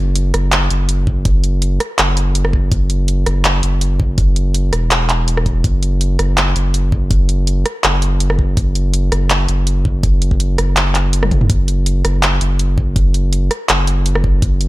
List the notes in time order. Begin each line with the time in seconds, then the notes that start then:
Already playing: F#1
0.15 closed hi-hat
0.34 F#1, cross-stick, closed hi-hat
0.52 clap, closed hi-hat
0.70 F#1, closed hi-hat
0.89 closed hi-hat
1.07 kick
1.25 kick, closed hi-hat
1.44 closed hi-hat
1.62 closed hi-hat
1.80 cross-stick, closed hi-hat
1.99 F#1, clap, closed hi-hat
2.17 closed hi-hat
2.35 closed hi-hat
2.45 cross-stick
2.53 kick
2.72 F#1, kick, closed hi-hat
2.90 closed hi-hat
3.08 closed hi-hat
3.26 F#1, cross-stick, closed hi-hat
3.45 clap, closed hi-hat
3.63 F#1, closed hi-hat
3.81 closed hi-hat
4.00 kick
4.18 kick, closed hi-hat
4.36 closed hi-hat
4.54 closed hi-hat
4.73 E1, cross-stick, closed hi-hat
4.91 clap, closed hi-hat
5.09 clap, closed hi-hat
5.28 closed hi-hat
5.37 cross-stick
5.46 kick, closed hi-hat
5.64 F#1, kick, closed hi-hat
5.83 closed hi-hat
6.01 closed hi-hat
6.19 F#1, cross-stick, closed hi-hat
6.38 clap, closed hi-hat
6.56 F#1, closed hi-hat
6.74 closed hi-hat
6.92 kick
7.11 kick, closed hi-hat
7.29 closed hi-hat
7.47 closed hi-hat
7.66 cross-stick, closed hi-hat
7.84 F#1, clap, closed hi-hat
8.02 closed hi-hat
8.20 closed hi-hat
8.30 cross-stick
8.39 kick
8.57 F#1, kick, closed hi-hat
8.75 closed hi-hat
8.94 closed hi-hat
9.12 F#1, cross-stick, closed hi-hat
9.30 clap, closed hi-hat
9.48 F#1, closed hi-hat
9.67 closed hi-hat
9.85 kick
10.03 kick, closed hi-hat
10.22 closed hi-hat
10.31 kick
10.40 closed hi-hat
10.58 F#1, cross-stick, closed hi-hat
10.77 clap, closed hi-hat
10.95 clap, closed hi-hat
11.13 closed hi-hat
11.23 cross-stick, high tom
11.31 kick, closed hi-hat, mid tom
11.41 mid tom
11.50 F#1, kick, closed hi-hat
11.68 closed hi-hat
11.86 closed hi-hat
12.05 F#1, cross-stick, closed hi-hat
12.23 clap, closed hi-hat
12.41 F#1, closed hi-hat
12.59 closed hi-hat
12.78 kick
12.96 kick, closed hi-hat
13.14 closed hi-hat
13.33 closed hi-hat
13.51 cross-stick, closed hi-hat
13.69 F#1, clap, closed hi-hat
13.87 closed hi-hat
14.06 closed hi-hat
14.15 cross-stick
14.24 kick
14.42 F#1, kick, closed hi-hat
14.61 closed hi-hat